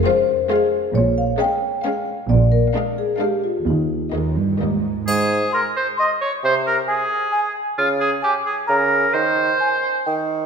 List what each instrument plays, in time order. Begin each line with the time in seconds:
0.06 viola section G#3, violin section F4 F5, marimba C5
0.50 viola section G#3, violin section F4 F5, marimba G#4
0.95 double bass section A#1, cello section A#2, marimba C#5
1.18 marimba F5
1.39 viola section G#3, violin section C#4 F5, marimba G5
1.84 viola section G#3, violin section C#4 F5, marimba F5
2.29 double bass section A#1, cello section A#2, marimba D5
2.52 marimba A#4
2.75 viola section G#3, violin section D4 F5
2.98 marimba G#4
3.20 viola section G#3, violin section D4 F5, marimba G4
3.44 marimba F4
3.67 cello section D#2, double bass section D#2, marimba D#4
4.14 cello section D#2, viola section G#3, violin section A#3 D#5
4.37 cello section G2
4.61 double bass section D#2, cello section G#2, viola section G3, violin section A#3 D#5
5.07 bassoon G#2, oboe G#4, triangle
5.53 oboe A#4, flute C6
5.77 oboe C5
5.97 oboe D#5, flute C6
6.21 oboe C#5
6.44 bassoon C3, oboe C5
6.67 oboe A#4
6.88 oboe G#4, flute G#5
7.32 flute G#5
7.78 bassoon C#3, oboe F4
8.00 oboe G#4
8.22 oboe G4, flute G#5
8.46 oboe G#4
8.67 bassoon C#3, oboe A#4, flute A#5
9.13 bassoon D#3, oboe C5
9.60 flute G#5
10.06 bassoon D#3, flute G5